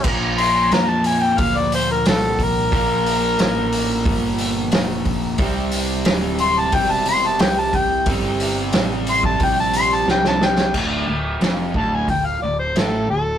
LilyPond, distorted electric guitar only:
\new Staff \with { instrumentName = "Distorted electric guitar" } { \clef bass \time 4/4 \key d \minor \tempo 4 = 90 <bes, f bes>1 | <bes, f bes>1 | <c g c'>1 | <c g c'>1 |
d,8 d,8 f,8 d,8 d,8 d,8 a,8 d,8 | }